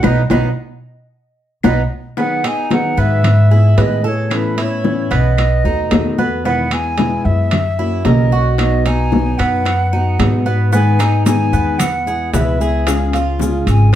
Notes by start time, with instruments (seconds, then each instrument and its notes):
0.03 upright bass B1, steel-string acoustic guitar F#3 B3 D#4, cuban tres B3 D#4, flute D#5, high bongo, high conga, high timbale, claves
0.30 upright bass B1, steel-string acoustic guitar F#3 B3 D#4, cuban tres B3 D#4, flute D#5, high bongo, high conga, high timbale, claves
1.63 upright bass B1, steel-string acoustic guitar F#3 B3 D#4, cuban tres B3 D#4, flute D#5, high bongo, high conga, high timbale, claves
2.17 steel-string acoustic guitar D#3 F#3 B3 D#4 G#4, cuban tres B3, flute F#5, high bongo, high conga
2.44 steel-string acoustic guitar B3 D#4 G#4, cuban tres D#4, flute G#5, high bongo, high conga, high timbale, claves
2.71 steel-string acoustic guitar D#3 F#3 B3 D#4 G#4, flute F#5, high bongo, high conga, high timbale, low timbale
2.97 upright bass G#2, cuban tres B3, flute E5, high bongo, high conga
3.24 muted steel-string acoustic guitar stroke, high bongo, high conga, low conga, high timbale, claves
3.51 steel-string acoustic guitar B3 E4 G#4, cuban tres E4, high bongo, high conga
3.77 upright bass A2, steel-string acoustic guitar D#3 G#3 B3 E4 G#4, cuban tres B4, flute D#5, high bongo, low bongo, high conga, high timbale, low timbale
4.04 steel-string acoustic guitar B3 E4 G#4, cuban tres A4, flute C#5, high conga
4.30 steel-string acoustic guitar E3 B3 C#4 E4, high bongo, high conga, high timbale, claves
4.35 flute B4
4.57 steel-string acoustic guitar B3 C#4 E4, cuban tres E4, high bongo, high conga, high timbale
4.61 flute C#5
4.84 steel-string acoustic guitar E3 B3 C#4 E4, high bongo, high conga, low timbale
5.11 upright bass B1, cuban tres B3, high bongo, high conga, high timbale
5.15 flute D#5
5.38 muted steel-string acoustic guitar stroke, high bongo, high conga, high timbale, claves
5.64 upright bass D#2, steel-string acoustic guitar A3 B3 F#4, cuban tres D#4, high bongo, high conga
5.90 upright bass E2, steel-string acoustic guitar B2 D#3 A3 B3 F#4, high bongo, low bongo, high conga, high timbale, low timbale, claves
6.17 steel-string acoustic guitar A3 B3 F#4, cuban tres B3, high conga
6.44 steel-string acoustic guitar B2 D#3 G#3 B3 E4, cuban tres B3, flute F#5, high bongo, high conga
6.71 steel-string acoustic guitar G#3 B3 E4, flute G#5, high bongo, high conga, high timbale, claves
6.97 steel-string acoustic guitar B2 G#3 B3 E4, high bongo, high conga, high timbale, low timbale
7.25 upright bass F#2, flute E5, high bongo, high conga
7.51 muted steel-string acoustic guitar stroke, high bongo, high conga, low conga, high timbale, claves
7.79 steel-string acoustic guitar A#3 C#4 F#4, cuban tres E4, high bongo, high conga
8.05 upright bass B1, steel-string acoustic guitar C#3 E3 A#3 C#4 F#4, cuban tres A#4, flute D#5, high bongo, low bongo, high conga, high timbale, low timbale
8.32 steel-string acoustic guitar A#3 C#4 F#4, cuban tres F#4, high conga
8.58 steel-string acoustic guitar B2 F#3 B3 D#4 F#4, flute D#5, high bongo, high conga, high timbale, claves
8.85 steel-string acoustic guitar B3 D#4 F#4, cuban tres D#4, flute G#5, high bongo, high conga, high timbale
9.12 steel-string acoustic guitar B2 F#3 B3 D#4 F#4, high bongo, high conga, low timbale
9.38 upright bass F#2, cuban tres B3, flute F#5, high bongo, high conga, high timbale
9.65 muted steel-string acoustic guitar stroke, high bongo, high conga, high timbale, claves
9.92 steel-string acoustic guitar B3 D#4 F#4, cuban tres D#4, high bongo, high conga
10.19 upright bass G#2, steel-string acoustic guitar B2 F#3 B3 D#4 F#4, high bongo, low bongo, high conga, high timbale, low timbale, claves
10.46 cuban tres B3, steel-string acoustic guitar B3 D#4 F#4
10.73 steel-string acoustic guitar D#3 G#3 B3 D#4 G#4, cuban tres B3, flute G#5, high bongo, high conga, maracas
10.99 cuban tres D#4, steel-string acoustic guitar D#4 G#4, high bongo, high conga, high timbale, claves, maracas
11.03 steel-string acoustic guitar B3
11.26 steel-string acoustic guitar D#3 G#3 B3 D#4 G#4, flute G#5, high bongo, high conga, high timbale, low timbale, maracas
11.53 upright bass E2, cuban tres B3, high bongo, high conga, maracas
11.78 flute F#5, muted steel-string acoustic guitar stroke, high bongo, high conga, low conga, high timbale, claves, maracas
12.06 steel-string acoustic guitar G#3 B3 E4, cuban tres G#4, high bongo, high conga, maracas
12.33 upright bass C#2, steel-string acoustic guitar B2 E3 G#3 B3 E4, cuban tres B4, flute E5, high bongo, low bongo, high conga, high timbale, low timbale, maracas
12.60 steel-string acoustic guitar G#3 B3 E4, cuban tres G#4, high conga, maracas
12.87 steel-string acoustic guitar C#3 G#3 C#4 F4 G#4, flute F5, high bongo, high conga, high timbale, claves, maracas
13.13 steel-string acoustic guitar C#4 F4 G#4, cuban tres F4, high bongo, high conga, high timbale, maracas
13.39 steel-string acoustic guitar C#3 G#3 C#4 F4 G#4, high bongo, high conga, low timbale, maracas
13.67 upright bass G#1, flute G#5, high bongo, high conga, high timbale, maracas